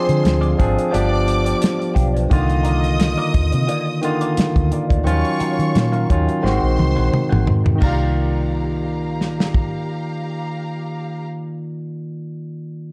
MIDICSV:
0, 0, Header, 1, 9, 480
1, 0, Start_track
1, 0, Tempo, 689338
1, 1604, Time_signature, 4, 2, 24, 8
1, 8998, End_track
2, 0, Start_track
2, 0, Title_t, "String section"
2, 0, Program_c, 0, 48
2, 0, Note_on_c, 0, 72, 99
2, 0, Note_on_c, 0, 84, 108
2, 389, Note_off_c, 0, 72, 0
2, 389, Note_off_c, 0, 84, 0
2, 642, Note_on_c, 0, 86, 109
2, 645, Note_on_c, 0, 74, 98
2, 1349, Note_off_c, 0, 86, 0
2, 1350, Note_off_c, 0, 74, 0
2, 1605, Note_on_c, 0, 75, 100
2, 1606, Note_on_c, 0, 87, 102
2, 3257, Note_off_c, 0, 75, 0
2, 3258, Note_off_c, 0, 87, 0
2, 3520, Note_on_c, 0, 85, 108
2, 3523, Note_on_c, 0, 73, 96
2, 4228, Note_off_c, 0, 85, 0
2, 4230, Note_off_c, 0, 73, 0
2, 4486, Note_on_c, 0, 72, 91
2, 4487, Note_on_c, 0, 84, 98
2, 5192, Note_off_c, 0, 72, 0
2, 5192, Note_off_c, 0, 84, 0
2, 5445, Note_on_c, 0, 82, 86
2, 5446, Note_on_c, 0, 67, 74
2, 5446, Note_on_c, 0, 77, 80
2, 7825, Note_off_c, 0, 82, 0
2, 7826, Note_off_c, 0, 67, 0
2, 7827, Note_off_c, 0, 77, 0
2, 8998, End_track
3, 0, Start_track
3, 0, Title_t, "Clean electric guitar"
3, 0, Program_c, 1, 27
3, 286, Note_on_c, 1, 68, 79
3, 287, Note_on_c, 1, 74, 92
3, 289, Note_on_c, 1, 65, 70
3, 290, Note_on_c, 1, 60, 70
3, 384, Note_off_c, 1, 60, 0
3, 385, Note_off_c, 1, 68, 0
3, 385, Note_off_c, 1, 74, 0
3, 386, Note_off_c, 1, 65, 0
3, 639, Note_on_c, 1, 59, 78
3, 642, Note_on_c, 1, 65, 83
3, 642, Note_on_c, 1, 67, 73
3, 644, Note_on_c, 1, 74, 77
3, 753, Note_off_c, 1, 59, 0
3, 755, Note_off_c, 1, 65, 0
3, 755, Note_off_c, 1, 67, 0
3, 755, Note_off_c, 1, 74, 0
3, 1008, Note_on_c, 1, 74, 56
3, 1010, Note_on_c, 1, 67, 54
3, 1014, Note_on_c, 1, 65, 43
3, 1015, Note_on_c, 1, 59, 41
3, 1085, Note_off_c, 1, 74, 0
3, 1086, Note_off_c, 1, 67, 0
3, 1088, Note_off_c, 1, 59, 0
3, 1088, Note_off_c, 1, 65, 0
3, 1350, Note_on_c, 1, 59, 66
3, 1353, Note_on_c, 1, 65, 62
3, 1354, Note_on_c, 1, 67, 61
3, 1358, Note_on_c, 1, 74, 64
3, 1444, Note_off_c, 1, 59, 0
3, 1446, Note_off_c, 1, 65, 0
3, 1446, Note_off_c, 1, 67, 0
3, 1448, Note_off_c, 1, 74, 0
3, 1486, Note_on_c, 1, 74, 55
3, 1488, Note_on_c, 1, 65, 51
3, 1488, Note_on_c, 1, 67, 54
3, 1490, Note_on_c, 1, 59, 52
3, 1564, Note_off_c, 1, 74, 0
3, 1565, Note_off_c, 1, 65, 0
3, 1565, Note_off_c, 1, 67, 0
3, 1566, Note_off_c, 1, 59, 0
3, 1833, Note_on_c, 1, 63, 79
3, 1839, Note_on_c, 1, 65, 79
3, 1843, Note_on_c, 1, 70, 91
3, 1843, Note_on_c, 1, 74, 83
3, 1950, Note_off_c, 1, 63, 0
3, 1953, Note_off_c, 1, 65, 0
3, 1955, Note_off_c, 1, 70, 0
3, 1955, Note_off_c, 1, 74, 0
3, 2212, Note_on_c, 1, 74, 74
3, 2214, Note_on_c, 1, 70, 80
3, 2218, Note_on_c, 1, 65, 71
3, 2219, Note_on_c, 1, 63, 62
3, 2308, Note_off_c, 1, 74, 0
3, 2309, Note_off_c, 1, 70, 0
3, 2311, Note_off_c, 1, 63, 0
3, 2311, Note_off_c, 1, 65, 0
3, 2556, Note_on_c, 1, 63, 74
3, 2557, Note_on_c, 1, 65, 74
3, 2563, Note_on_c, 1, 70, 83
3, 2566, Note_on_c, 1, 74, 81
3, 2672, Note_off_c, 1, 63, 0
3, 2672, Note_off_c, 1, 65, 0
3, 2675, Note_off_c, 1, 70, 0
3, 2676, Note_off_c, 1, 74, 0
3, 2932, Note_on_c, 1, 74, 61
3, 2936, Note_on_c, 1, 65, 49
3, 2936, Note_on_c, 1, 70, 51
3, 2939, Note_on_c, 1, 63, 47
3, 3007, Note_off_c, 1, 74, 0
3, 3009, Note_off_c, 1, 65, 0
3, 3009, Note_off_c, 1, 70, 0
3, 3011, Note_off_c, 1, 63, 0
3, 3283, Note_on_c, 1, 63, 51
3, 3286, Note_on_c, 1, 65, 52
3, 3291, Note_on_c, 1, 70, 54
3, 3293, Note_on_c, 1, 74, 57
3, 3371, Note_off_c, 1, 63, 0
3, 3372, Note_off_c, 1, 65, 0
3, 3375, Note_off_c, 1, 70, 0
3, 3376, Note_off_c, 1, 74, 0
3, 3405, Note_on_c, 1, 74, 46
3, 3409, Note_on_c, 1, 70, 57
3, 3412, Note_on_c, 1, 65, 49
3, 3415, Note_on_c, 1, 63, 44
3, 3484, Note_off_c, 1, 74, 0
3, 3486, Note_off_c, 1, 70, 0
3, 3487, Note_off_c, 1, 65, 0
3, 3489, Note_off_c, 1, 63, 0
3, 3755, Note_on_c, 1, 61, 84
3, 3761, Note_on_c, 1, 66, 82
3, 3764, Note_on_c, 1, 70, 88
3, 3765, Note_on_c, 1, 77, 92
3, 3871, Note_off_c, 1, 61, 0
3, 3874, Note_off_c, 1, 66, 0
3, 3876, Note_off_c, 1, 70, 0
3, 3876, Note_off_c, 1, 77, 0
3, 4124, Note_on_c, 1, 77, 77
3, 4125, Note_on_c, 1, 70, 79
3, 4131, Note_on_c, 1, 66, 68
3, 4132, Note_on_c, 1, 61, 65
3, 4224, Note_off_c, 1, 77, 0
3, 4225, Note_off_c, 1, 70, 0
3, 4227, Note_off_c, 1, 66, 0
3, 4228, Note_off_c, 1, 61, 0
3, 4475, Note_on_c, 1, 63, 69
3, 4475, Note_on_c, 1, 68, 64
3, 4478, Note_on_c, 1, 72, 68
3, 4483, Note_on_c, 1, 78, 77
3, 4591, Note_off_c, 1, 63, 0
3, 4592, Note_off_c, 1, 68, 0
3, 4593, Note_off_c, 1, 72, 0
3, 4595, Note_off_c, 1, 78, 0
3, 4845, Note_on_c, 1, 78, 51
3, 4847, Note_on_c, 1, 68, 52
3, 4848, Note_on_c, 1, 72, 56
3, 4851, Note_on_c, 1, 63, 44
3, 4924, Note_off_c, 1, 78, 0
3, 4925, Note_off_c, 1, 68, 0
3, 4926, Note_off_c, 1, 72, 0
3, 4927, Note_off_c, 1, 63, 0
3, 5079, Note_on_c, 1, 78, 70
3, 5081, Note_on_c, 1, 72, 62
3, 5084, Note_on_c, 1, 68, 66
3, 5087, Note_on_c, 1, 63, 57
3, 5182, Note_off_c, 1, 78, 0
3, 5183, Note_off_c, 1, 72, 0
3, 5184, Note_off_c, 1, 68, 0
3, 5186, Note_off_c, 1, 63, 0
3, 5422, Note_on_c, 1, 63, 71
3, 5437, Note_on_c, 1, 70, 72
3, 5451, Note_on_c, 1, 74, 79
3, 5460, Note_on_c, 1, 77, 77
3, 7860, Note_off_c, 1, 63, 0
3, 7874, Note_off_c, 1, 70, 0
3, 7888, Note_off_c, 1, 74, 0
3, 7897, Note_off_c, 1, 77, 0
3, 8998, End_track
4, 0, Start_track
4, 0, Title_t, "Tine electric piano"
4, 0, Program_c, 2, 4
4, 0, Control_c, 2, 64, 127
4, 0, Note_on_c, 2, 53, 111
4, 0, Note_on_c, 2, 60, 105
4, 0, Note_on_c, 2, 62, 104
4, 0, Note_on_c, 2, 68, 117
4, 260, Note_off_c, 2, 53, 0
4, 263, Note_off_c, 2, 60, 0
4, 266, Note_off_c, 2, 62, 0
4, 271, Note_off_c, 2, 68, 0
4, 405, Note_on_c, 2, 53, 88
4, 414, Note_on_c, 2, 60, 77
4, 420, Note_on_c, 2, 62, 77
4, 426, Note_on_c, 2, 68, 93
4, 626, Note_off_c, 2, 53, 0
4, 634, Note_on_c, 2, 53, 92
4, 639, Note_off_c, 2, 62, 0
4, 644, Note_on_c, 2, 59, 84
4, 648, Note_on_c, 2, 62, 81
4, 649, Note_off_c, 2, 60, 0
4, 654, Control_c, 2, 64, 0
4, 655, Note_off_c, 2, 68, 0
4, 658, Note_on_c, 2, 67, 99
4, 760, Control_c, 2, 64, 127
4, 1411, Note_off_c, 2, 53, 0
4, 1416, Note_off_c, 2, 59, 0
4, 1418, Note_off_c, 2, 62, 0
4, 1423, Note_off_c, 2, 67, 0
4, 1599, Note_on_c, 2, 51, 105
4, 1604, Note_on_c, 2, 58, 95
4, 1614, Control_c, 2, 64, 0
4, 1615, Note_on_c, 2, 50, 101
4, 1621, Note_on_c, 2, 65, 115
4, 1751, Control_c, 2, 64, 127
4, 2368, Note_off_c, 2, 51, 0
4, 2370, Note_off_c, 2, 58, 0
4, 2376, Note_off_c, 2, 50, 0
4, 2379, Note_off_c, 2, 65, 0
4, 2797, Note_on_c, 2, 51, 88
4, 2806, Note_on_c, 2, 58, 82
4, 2810, Note_on_c, 2, 50, 84
4, 2815, Note_on_c, 2, 65, 97
4, 3380, Note_off_c, 2, 51, 0
4, 3385, Note_off_c, 2, 58, 0
4, 3387, Note_off_c, 2, 50, 0
4, 3389, Note_off_c, 2, 65, 0
4, 3509, Note_on_c, 2, 51, 101
4, 3516, Note_on_c, 2, 53, 77
4, 3526, Note_on_c, 2, 61, 100
4, 3530, Note_on_c, 2, 65, 116
4, 3534, Control_c, 2, 64, 0
4, 3564, Note_on_c, 2, 54, 88
4, 3569, Note_off_c, 2, 53, 0
4, 3672, Control_c, 2, 64, 127
4, 4097, Note_off_c, 2, 51, 0
4, 4105, Note_off_c, 2, 61, 0
4, 4107, Note_off_c, 2, 65, 0
4, 4124, Note_off_c, 2, 54, 0
4, 4241, Note_on_c, 2, 51, 85
4, 4248, Note_on_c, 2, 54, 73
4, 4253, Note_on_c, 2, 61, 72
4, 4261, Note_on_c, 2, 65, 91
4, 4467, Note_off_c, 2, 51, 0
4, 4476, Note_on_c, 2, 51, 91
4, 4484, Note_on_c, 2, 56, 80
4, 4486, Note_off_c, 2, 54, 0
4, 4489, Note_off_c, 2, 61, 0
4, 4489, Note_on_c, 2, 60, 75
4, 4493, Note_off_c, 2, 65, 0
4, 4495, Control_c, 2, 64, 0
4, 4497, Note_on_c, 2, 66, 98
4, 4600, Control_c, 2, 64, 127
4, 5252, Note_off_c, 2, 51, 0
4, 5257, Note_off_c, 2, 56, 0
4, 5259, Note_off_c, 2, 60, 0
4, 5263, Note_off_c, 2, 66, 0
4, 5399, Note_on_c, 2, 51, 76
4, 5427, Note_on_c, 2, 58, 73
4, 5454, Control_c, 2, 64, 0
4, 5455, Note_on_c, 2, 74, 67
4, 5482, Note_on_c, 2, 65, 82
4, 5570, Control_c, 2, 64, 127
4, 7780, Note_off_c, 2, 51, 0
4, 7808, Note_off_c, 2, 58, 0
4, 7835, Note_off_c, 2, 74, 0
4, 7862, Note_off_c, 2, 65, 0
4, 8998, End_track
5, 0, Start_track
5, 0, Title_t, "French horn section"
5, 0, Program_c, 3, 60
5, 0, Note_on_c, 3, 50, 84
5, 0, Note_on_c, 3, 56, 70
5, 0, Note_on_c, 3, 60, 69
5, 0, Note_on_c, 3, 65, 87
5, 639, Note_off_c, 3, 56, 0
5, 640, Note_off_c, 3, 60, 0
5, 644, Note_on_c, 3, 59, 69
5, 645, Note_on_c, 3, 55, 69
5, 1588, Note_off_c, 3, 65, 0
5, 1589, Note_off_c, 3, 50, 0
5, 1595, Note_off_c, 3, 55, 0
5, 1595, Note_off_c, 3, 59, 0
5, 8998, End_track
6, 0, Start_track
6, 0, Title_t, "Fingered electric bass"
6, 0, Program_c, 4, 33
6, 63, Note_on_c, 4, 50, 94
6, 154, Note_off_c, 4, 50, 0
6, 172, Note_on_c, 4, 38, 99
6, 375, Note_off_c, 4, 38, 0
6, 418, Note_on_c, 4, 32, 89
6, 524, Note_off_c, 4, 32, 0
6, 656, Note_on_c, 4, 31, 110
6, 1064, Note_off_c, 4, 31, 0
6, 1369, Note_on_c, 4, 35, 90
6, 1573, Note_off_c, 4, 35, 0
6, 1612, Note_on_c, 4, 36, 104
6, 2190, Note_off_c, 4, 36, 0
6, 2331, Note_on_c, 4, 39, 88
6, 2439, Note_off_c, 4, 39, 0
6, 2460, Note_on_c, 4, 48, 90
6, 2552, Note_off_c, 4, 48, 0
6, 3178, Note_on_c, 4, 38, 86
6, 3271, Note_off_c, 4, 38, 0
6, 3416, Note_on_c, 4, 38, 79
6, 3510, Note_off_c, 4, 38, 0
6, 3522, Note_on_c, 4, 39, 102
6, 3635, Note_off_c, 4, 39, 0
6, 3893, Note_on_c, 4, 51, 93
6, 3989, Note_off_c, 4, 51, 0
6, 4006, Note_on_c, 4, 46, 86
6, 4212, Note_off_c, 4, 46, 0
6, 4252, Note_on_c, 4, 39, 92
6, 4360, Note_off_c, 4, 39, 0
6, 4482, Note_on_c, 4, 32, 103
6, 4595, Note_off_c, 4, 32, 0
6, 4614, Note_on_c, 4, 34, 97
6, 4709, Note_off_c, 4, 34, 0
6, 4726, Note_on_c, 4, 36, 84
6, 4837, Note_off_c, 4, 36, 0
6, 4857, Note_on_c, 4, 34, 85
6, 4951, Note_off_c, 4, 34, 0
6, 5100, Note_on_c, 4, 32, 68
6, 5193, Note_off_c, 4, 32, 0
6, 5209, Note_on_c, 4, 44, 89
6, 5414, Note_off_c, 4, 44, 0
6, 5446, Note_on_c, 4, 36, 89
6, 7827, Note_off_c, 4, 36, 0
6, 8998, End_track
7, 0, Start_track
7, 0, Title_t, "Muted clean electric guitar strokes"
7, 159, Note_on_c, 9, 29, 42
7, 229, Note_off_c, 9, 29, 0
7, 393, Note_on_c, 9, 29, 38
7, 462, Note_off_c, 9, 29, 0
7, 525, Note_on_c, 9, 29, 44
7, 595, Note_off_c, 9, 29, 0
7, 888, Note_on_c, 9, 29, 44
7, 958, Note_off_c, 9, 29, 0
7, 1120, Note_on_c, 9, 29, 33
7, 1189, Note_off_c, 9, 29, 0
7, 1249, Note_on_c, 9, 29, 36
7, 1319, Note_off_c, 9, 29, 0
7, 2083, Note_on_c, 9, 29, 38
7, 2152, Note_off_c, 9, 29, 0
7, 2319, Note_on_c, 9, 29, 36
7, 2388, Note_off_c, 9, 29, 0
7, 2451, Note_on_c, 9, 29, 37
7, 2521, Note_off_c, 9, 29, 0
7, 2802, Note_on_c, 9, 29, 35
7, 2872, Note_off_c, 9, 29, 0
7, 3045, Note_on_c, 9, 29, 37
7, 3115, Note_off_c, 9, 29, 0
7, 3174, Note_on_c, 9, 29, 41
7, 3244, Note_off_c, 9, 29, 0
7, 4002, Note_on_c, 9, 29, 38
7, 4071, Note_off_c, 9, 29, 0
7, 4368, Note_on_c, 9, 29, 32
7, 4437, Note_off_c, 9, 29, 0
7, 4717, Note_on_c, 9, 29, 28
7, 4787, Note_off_c, 9, 29, 0
7, 4958, Note_on_c, 9, 29, 38
7, 5028, Note_off_c, 9, 29, 0
7, 5194, Note_on_c, 9, 29, 36
7, 5263, Note_off_c, 9, 29, 0
7, 5321, Note_on_c, 9, 29, 35
7, 5391, Note_off_c, 9, 29, 0
7, 8998, End_track
8, 0, Start_track
8, 0, Title_t, "Muted fingered electric bass strokes"
8, 3048, Note_on_c, 9, 29, 46
8, 3118, Note_off_c, 9, 29, 0
8, 3766, Note_on_c, 9, 29, 45
8, 3836, Note_off_c, 9, 29, 0
8, 4969, Note_on_c, 9, 29, 46
8, 5039, Note_off_c, 9, 29, 0
8, 8998, End_track
9, 0, Start_track
9, 0, Title_t, "Drums"
9, 62, Note_on_c, 9, 42, 44
9, 132, Note_off_c, 9, 42, 0
9, 175, Note_on_c, 9, 42, 74
9, 185, Note_on_c, 9, 38, 97
9, 245, Note_off_c, 9, 42, 0
9, 255, Note_off_c, 9, 38, 0
9, 299, Note_on_c, 9, 42, 32
9, 369, Note_off_c, 9, 42, 0
9, 414, Note_on_c, 9, 36, 95
9, 415, Note_on_c, 9, 42, 62
9, 484, Note_off_c, 9, 36, 0
9, 484, Note_off_c, 9, 42, 0
9, 547, Note_on_c, 9, 42, 46
9, 616, Note_off_c, 9, 42, 0
9, 655, Note_on_c, 9, 42, 73
9, 725, Note_off_c, 9, 42, 0
9, 891, Note_on_c, 9, 42, 78
9, 960, Note_off_c, 9, 42, 0
9, 1017, Note_on_c, 9, 42, 53
9, 1087, Note_off_c, 9, 42, 0
9, 1127, Note_on_c, 9, 42, 99
9, 1141, Note_on_c, 9, 38, 110
9, 1196, Note_off_c, 9, 42, 0
9, 1211, Note_off_c, 9, 38, 0
9, 1265, Note_on_c, 9, 42, 34
9, 1335, Note_off_c, 9, 42, 0
9, 1365, Note_on_c, 9, 36, 80
9, 1370, Note_on_c, 9, 42, 69
9, 1434, Note_off_c, 9, 36, 0
9, 1440, Note_off_c, 9, 42, 0
9, 1508, Note_on_c, 9, 42, 46
9, 1578, Note_off_c, 9, 42, 0
9, 1610, Note_on_c, 9, 36, 108
9, 1612, Note_on_c, 9, 42, 76
9, 1679, Note_off_c, 9, 36, 0
9, 1681, Note_off_c, 9, 42, 0
9, 1738, Note_on_c, 9, 42, 37
9, 1807, Note_off_c, 9, 42, 0
9, 1843, Note_on_c, 9, 42, 77
9, 1912, Note_off_c, 9, 42, 0
9, 1977, Note_on_c, 9, 42, 43
9, 2046, Note_off_c, 9, 42, 0
9, 2086, Note_on_c, 9, 42, 83
9, 2096, Note_on_c, 9, 38, 99
9, 2156, Note_off_c, 9, 42, 0
9, 2166, Note_off_c, 9, 38, 0
9, 2327, Note_on_c, 9, 42, 59
9, 2328, Note_on_c, 9, 36, 89
9, 2397, Note_off_c, 9, 42, 0
9, 2398, Note_off_c, 9, 36, 0
9, 2454, Note_on_c, 9, 42, 47
9, 2524, Note_off_c, 9, 42, 0
9, 2567, Note_on_c, 9, 42, 78
9, 2637, Note_off_c, 9, 42, 0
9, 2805, Note_on_c, 9, 42, 77
9, 2874, Note_off_c, 9, 42, 0
9, 2932, Note_on_c, 9, 42, 52
9, 3001, Note_off_c, 9, 42, 0
9, 3045, Note_on_c, 9, 42, 94
9, 3060, Note_on_c, 9, 38, 114
9, 3115, Note_off_c, 9, 42, 0
9, 3130, Note_off_c, 9, 38, 0
9, 3174, Note_on_c, 9, 36, 93
9, 3178, Note_on_c, 9, 42, 35
9, 3244, Note_off_c, 9, 36, 0
9, 3248, Note_off_c, 9, 42, 0
9, 3285, Note_on_c, 9, 42, 61
9, 3354, Note_off_c, 9, 42, 0
9, 3415, Note_on_c, 9, 36, 93
9, 3422, Note_on_c, 9, 42, 45
9, 3484, Note_off_c, 9, 36, 0
9, 3491, Note_off_c, 9, 42, 0
9, 3529, Note_on_c, 9, 42, 87
9, 3598, Note_off_c, 9, 42, 0
9, 3653, Note_on_c, 9, 42, 36
9, 3723, Note_off_c, 9, 42, 0
9, 3762, Note_on_c, 9, 42, 79
9, 3831, Note_off_c, 9, 42, 0
9, 3897, Note_on_c, 9, 42, 42
9, 3967, Note_off_c, 9, 42, 0
9, 4006, Note_on_c, 9, 42, 74
9, 4016, Note_on_c, 9, 38, 97
9, 4076, Note_off_c, 9, 42, 0
9, 4085, Note_off_c, 9, 38, 0
9, 4131, Note_on_c, 9, 42, 30
9, 4200, Note_off_c, 9, 42, 0
9, 4248, Note_on_c, 9, 36, 89
9, 4248, Note_on_c, 9, 42, 58
9, 4318, Note_off_c, 9, 36, 0
9, 4318, Note_off_c, 9, 42, 0
9, 4377, Note_on_c, 9, 42, 44
9, 4447, Note_off_c, 9, 42, 0
9, 4499, Note_on_c, 9, 38, 59
9, 4569, Note_off_c, 9, 38, 0
9, 4729, Note_on_c, 9, 48, 67
9, 4799, Note_off_c, 9, 48, 0
9, 4969, Note_on_c, 9, 47, 84
9, 5038, Note_off_c, 9, 47, 0
9, 5100, Note_on_c, 9, 45, 75
9, 5169, Note_off_c, 9, 45, 0
9, 5204, Note_on_c, 9, 43, 86
9, 5273, Note_off_c, 9, 43, 0
9, 5333, Note_on_c, 9, 43, 85
9, 5403, Note_off_c, 9, 43, 0
9, 5443, Note_on_c, 9, 49, 70
9, 5445, Note_on_c, 9, 36, 99
9, 5512, Note_off_c, 9, 49, 0
9, 5514, Note_off_c, 9, 36, 0
9, 6414, Note_on_c, 9, 38, 52
9, 6483, Note_off_c, 9, 38, 0
9, 6547, Note_on_c, 9, 38, 72
9, 6617, Note_off_c, 9, 38, 0
9, 6646, Note_on_c, 9, 36, 81
9, 6716, Note_off_c, 9, 36, 0
9, 8998, End_track
0, 0, End_of_file